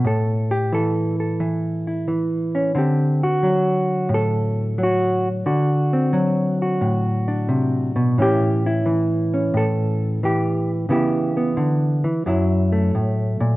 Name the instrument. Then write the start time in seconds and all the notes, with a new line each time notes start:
hollow-body jazz guitar
0.04 A2 A4
0.51 G4
0.72 E3 A4
1.20 A4
1.40 E3
1.87 E4
2.07 E3
2.55 C#4
2.75 D3 C4 G4
3.23 F#4
3.43 F#3
4.09 A2
4.15 A4
4.78 F#3
4.84 F#4
5.46 D3 F#4
5.93 C4
6.13 F#3
6.62 F#4
6.81 A2
7.28 D4
7.49 C3
7.96 B2
8.18 A2 E3 C#4 E4
8.22 G4
8.67 E4
8.86 E3
9.34 C#4
9.54 A2 A4
10.23 E3 G4
10.89 C#3 E3 B3 E4 G4
11.37 B3
11.57 D3
12.04 E3
12.26 F#2 F#3 E4
12.72 A3
12.95 A2
13.40 A#2